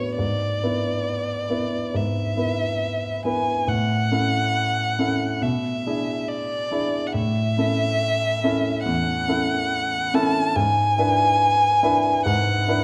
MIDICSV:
0, 0, Header, 1, 3, 480
1, 0, Start_track
1, 0, Key_signature, 3, "major"
1, 0, Tempo, 884956
1, 106, Time_signature, 4, 2, 24, 8
1, 1064, Tempo, 867052
1, 2984, Tempo, 854701
1, 7144, End_track
2, 0, Start_track
2, 0, Title_t, "Violin"
2, 0, Program_c, 0, 40
2, 0, Note_on_c, 0, 73, 48
2, 95, Note_off_c, 0, 73, 0
2, 99, Note_on_c, 0, 74, 55
2, 1064, Note_on_c, 0, 76, 51
2, 1072, Note_off_c, 0, 74, 0
2, 1776, Note_off_c, 0, 76, 0
2, 1779, Note_on_c, 0, 80, 54
2, 2019, Note_on_c, 0, 78, 64
2, 2028, Note_off_c, 0, 80, 0
2, 2980, Note_on_c, 0, 76, 45
2, 2988, Note_off_c, 0, 78, 0
2, 3462, Note_on_c, 0, 74, 57
2, 3471, Note_off_c, 0, 76, 0
2, 3904, Note_on_c, 0, 78, 45
2, 3912, Note_off_c, 0, 74, 0
2, 3935, Note_on_c, 0, 76, 73
2, 3944, Note_off_c, 0, 78, 0
2, 4895, Note_off_c, 0, 76, 0
2, 4898, Note_on_c, 0, 78, 65
2, 5630, Note_on_c, 0, 81, 74
2, 5638, Note_off_c, 0, 78, 0
2, 5864, Note_on_c, 0, 80, 79
2, 5872, Note_off_c, 0, 81, 0
2, 6820, Note_off_c, 0, 80, 0
2, 6822, Note_on_c, 0, 78, 64
2, 7144, Note_off_c, 0, 78, 0
2, 7144, End_track
3, 0, Start_track
3, 0, Title_t, "Grand piano"
3, 0, Program_c, 1, 0
3, 0, Control_c, 1, 64, 127
3, 0, Note_on_c, 1, 45, 38
3, 0, Note_on_c, 1, 59, 30
3, 0, Note_on_c, 1, 66, 32
3, 0, Note_on_c, 1, 71, 32
3, 81, Note_off_c, 1, 59, 0
3, 83, Note_off_c, 1, 66, 0
3, 84, Note_off_c, 1, 71, 0
3, 100, Note_on_c, 1, 44, 36
3, 114, Control_c, 1, 64, 0
3, 120, Note_off_c, 1, 45, 0
3, 193, Control_c, 1, 64, 127
3, 339, Note_off_c, 1, 44, 0
3, 343, Note_on_c, 1, 59, 29
3, 345, Note_on_c, 1, 71, 28
3, 347, Note_on_c, 1, 64, 28
3, 803, Note_off_c, 1, 59, 0
3, 804, Note_off_c, 1, 71, 0
3, 805, Note_off_c, 1, 64, 0
3, 811, Note_on_c, 1, 59, 32
3, 816, Note_on_c, 1, 71, 32
3, 817, Note_on_c, 1, 64, 29
3, 1035, Note_off_c, 1, 59, 0
3, 1037, Note_off_c, 1, 64, 0
3, 1037, Note_off_c, 1, 71, 0
3, 1053, Note_on_c, 1, 44, 34
3, 1287, Note_on_c, 1, 59, 30
3, 1290, Note_off_c, 1, 44, 0
3, 1291, Note_on_c, 1, 64, 32
3, 1296, Note_on_c, 1, 71, 31
3, 1752, Note_off_c, 1, 59, 0
3, 1754, Note_off_c, 1, 64, 0
3, 1756, Note_off_c, 1, 71, 0
3, 1775, Note_on_c, 1, 59, 33
3, 1778, Note_on_c, 1, 64, 32
3, 1781, Note_on_c, 1, 71, 35
3, 1996, Note_off_c, 1, 59, 0
3, 1998, Note_off_c, 1, 64, 0
3, 1999, Note_off_c, 1, 71, 0
3, 2011, Note_on_c, 1, 45, 40
3, 2033, Control_c, 1, 64, 0
3, 2114, Control_c, 1, 64, 127
3, 2251, Note_off_c, 1, 45, 0
3, 2257, Note_on_c, 1, 61, 28
3, 2258, Note_on_c, 1, 69, 34
3, 2259, Note_on_c, 1, 64, 29
3, 2719, Note_off_c, 1, 61, 0
3, 2720, Note_off_c, 1, 69, 0
3, 2721, Note_off_c, 1, 64, 0
3, 2739, Note_on_c, 1, 61, 33
3, 2743, Note_on_c, 1, 64, 33
3, 2746, Note_on_c, 1, 69, 37
3, 2960, Note_off_c, 1, 61, 0
3, 2962, Note_off_c, 1, 64, 0
3, 2963, Note_off_c, 1, 69, 0
3, 2976, Note_on_c, 1, 47, 47
3, 2995, Control_c, 1, 64, 0
3, 3082, Control_c, 1, 64, 127
3, 3215, Note_off_c, 1, 47, 0
3, 3229, Note_on_c, 1, 62, 31
3, 3232, Note_on_c, 1, 64, 31
3, 3232, Note_on_c, 1, 68, 36
3, 3683, Note_off_c, 1, 62, 0
3, 3685, Note_off_c, 1, 64, 0
3, 3685, Note_off_c, 1, 68, 0
3, 3705, Note_on_c, 1, 62, 34
3, 3708, Note_on_c, 1, 64, 36
3, 3712, Note_on_c, 1, 68, 39
3, 3922, Note_off_c, 1, 62, 0
3, 3924, Note_off_c, 1, 64, 0
3, 3926, Note_off_c, 1, 68, 0
3, 3944, Note_on_c, 1, 45, 40
3, 3954, Control_c, 1, 64, 0
3, 4040, Control_c, 1, 64, 127
3, 4178, Note_off_c, 1, 45, 0
3, 4188, Note_on_c, 1, 64, 31
3, 4193, Note_on_c, 1, 61, 29
3, 4196, Note_on_c, 1, 69, 36
3, 4647, Note_off_c, 1, 64, 0
3, 4649, Note_off_c, 1, 61, 0
3, 4650, Note_off_c, 1, 69, 0
3, 4674, Note_on_c, 1, 61, 40
3, 4675, Note_on_c, 1, 64, 37
3, 4677, Note_on_c, 1, 69, 43
3, 4890, Note_off_c, 1, 61, 0
3, 4891, Note_off_c, 1, 64, 0
3, 4892, Note_off_c, 1, 69, 0
3, 4909, Note_on_c, 1, 40, 41
3, 5145, Note_off_c, 1, 40, 0
3, 5147, Note_on_c, 1, 61, 32
3, 5151, Note_on_c, 1, 64, 35
3, 5152, Note_on_c, 1, 69, 39
3, 5610, Note_off_c, 1, 61, 0
3, 5611, Note_off_c, 1, 64, 0
3, 5612, Note_off_c, 1, 69, 0
3, 5628, Note_on_c, 1, 61, 42
3, 5630, Note_on_c, 1, 64, 43
3, 5633, Note_on_c, 1, 69, 45
3, 5846, Note_off_c, 1, 61, 0
3, 5847, Note_off_c, 1, 64, 0
3, 5848, Note_off_c, 1, 69, 0
3, 5864, Note_on_c, 1, 44, 47
3, 5882, Control_c, 1, 64, 0
3, 5981, Control_c, 1, 64, 127
3, 6098, Note_off_c, 1, 44, 0
3, 6102, Note_on_c, 1, 64, 37
3, 6103, Note_on_c, 1, 62, 36
3, 6107, Note_on_c, 1, 71, 44
3, 6560, Note_off_c, 1, 62, 0
3, 6560, Note_off_c, 1, 64, 0
3, 6562, Note_off_c, 1, 71, 0
3, 6578, Note_on_c, 1, 62, 42
3, 6578, Note_on_c, 1, 64, 45
3, 6584, Note_on_c, 1, 71, 44
3, 6798, Note_off_c, 1, 62, 0
3, 6798, Note_off_c, 1, 64, 0
3, 6801, Note_off_c, 1, 71, 0
3, 6818, Note_on_c, 1, 44, 50
3, 7053, Note_off_c, 1, 44, 0
3, 7057, Note_on_c, 1, 62, 40
3, 7060, Note_on_c, 1, 64, 40
3, 7062, Note_on_c, 1, 71, 43
3, 7144, Note_off_c, 1, 62, 0
3, 7144, Note_off_c, 1, 64, 0
3, 7144, Note_off_c, 1, 71, 0
3, 7144, End_track
0, 0, End_of_file